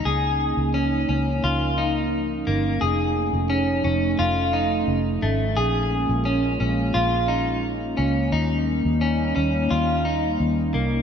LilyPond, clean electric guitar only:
\new Staff \with { instrumentName = "Clean electric guitar" } { \time 4/4 \key des \lydian \tempo 4 = 87 aes'4 des'8 des'8 f'8 ees'4 bes8 | gis'4 cis'8 cis'8 f'8 ees'4 a8 | aes'4 des'8 des'8 f'8 ees'4 des'8 | ees'4 des'8 des'8 f'8 ees'4 bes8 | }